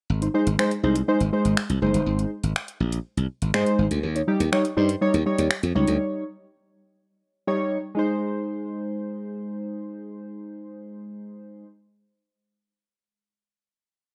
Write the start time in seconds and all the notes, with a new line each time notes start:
0.10 G#1
0.22 D#4 C5, closed hi-hat
0.34 G#3 D#4 C5
0.47 G#1, closed hi-hat
0.59 G#3 D#4 C5, finger snap
0.71 closed hi-hat
0.83 C2 G#3 D#4 C5
0.96 closed hi-hat
1.08 G#3 D#4 C5
1.20 G#1, closed hi-hat
1.33 G#3 D#4 C5
1.45 G#1, closed hi-hat
1.57 finger snap
1.70 C2, closed hi-hat
1.82 F#1 G#3 D#4 C5
1.94 G1, closed hi-hat
2.06 G#1
2.19 closed hi-hat
2.43 G#1, closed hi-hat
2.56 finger snap
2.68 closed hi-hat
2.80 A#1
2.92 closed hi-hat
3.17 C2, closed hi-hat
3.42 G#1, closed hi-hat
3.54 G#2 G#3 D#4 C5, finger snap
3.66 closed hi-hat
3.79 G#1
3.91 D2, closed hi-hat
4.03 D#2
4.15 D#4 C#5, closed hi-hat
4.28 G3 D#4 G4
4.40 D#2, closed hi-hat
4.52 G3 D#4 C#5, finger snap
4.65 closed hi-hat
4.77 G2 G3 D#4 C5
4.89 closed hi-hat
5.01 G3 D#4 C#5
5.14 D#2, closed hi-hat
5.26 G3 D#4 C#5
5.38 D#2, closed hi-hat
5.51 finger snap
5.63 F2, closed hi-hat
5.75 C#2 G3 D#4 C#5
5.88 D2, closed hi-hat
7.47 G3 D#4 C#5
7.95 G#3 D#4
7.99 C5